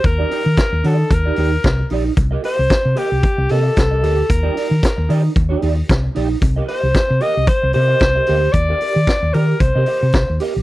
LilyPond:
<<
  \new Staff \with { instrumentName = "Alto saxophone" } { \time 4/4 \key c \dorian \tempo 4 = 113 bes'4. a'8 bes'4. r8 | r8 c''4 g'4 a'4. | bes'2 r2 | r8 c''4 ees''8 c''8 c''4. |
d''4. bes'8 c''4. r8 | }
  \new Staff \with { instrumentName = "Clean electric guitar" } { \time 4/4 \key c \dorian r16 <ees' g' d''>16 <ees' g' d''>16 r8. <ees' g' d''>8 r16 <ees' g' d''>16 <ees' g' d''>16 r8. <ees' g' d''>8 | r16 <g' bes' ees''>16 <g' bes' ees''>16 r8. <g' bes' ees''>8 r8 <g' bes' ees''>16 <g' bes' ees''>16 r16 <g' bes' ees''>16 <g' bes' ees''>8 | r16 <ees' g' d''>16 <ees' g' d''>16 r8. <ees' g' d''>8 r16 <ees' g' d''>16 <ees' g' d''>16 r8. <ees' g' d''>8 | r16 <g' bes' ees''>16 <g' bes' ees''>16 r8. <g' bes' ees''>8 r8 <g' bes' ees''>16 <g' bes' ees''>16 r16 <g' bes' ees''>16 <g' bes' ees''>8 |
r16 <g' bes' d''>16 <g' bes' d''>16 r8. <g' bes' d''>8 r16 <g' bes' ees''>16 <g' bes' ees''>16 r8. <g' bes' ees''>8 | }
  \new Staff \with { instrumentName = "Fingered electric bass" } { \clef bass \time 4/4 \key c \dorian ees,8 r16 ees16 r16 ees,16 ees8 ees,8 ees,8 c,8 bes,,8 | c,8 r16 c,16 r16 c16 r16 c,16 r16 c,16 c8 c,8 d,8 | ees,8 r16 ees16 r16 ees,16 ees8 ees,8 ees,8 c,8 bes,,8 | c,8 r16 c,16 r16 c16 r16 c,16 r16 c,16 c8 c,8 d,8 |
ees,8 r16 ees16 r16 ees,16 ees8 c,16 c16 r16 c16 c,16 ees,16 r16 bes,,16 | }
  \new DrumStaff \with { instrumentName = "Drums" } \drummode { \time 4/4 <hh bd>8 hho8 <hh bd sn>8 hho8 <hh bd>8 hho8 <hh bd sn>8 hho8 | <hh bd>8 hho8 <hh bd sn>8 hho8 <hh bd>8 hho8 <hh bd sn>8 hho8 | <hh bd>8 hho8 <hh bd sn>8 hho8 <hh bd>8 hho8 <hh bd sn>8 hho8 | <hh bd>8 hho8 <hh bd sn>8 hho8 <hh bd>8 hho8 <hh bd sn>8 hho8 |
<hh bd>8 hho8 <hh bd sn>8 hho8 <hh bd>8 hho8 <hh bd sn>8 hho8 | }
>>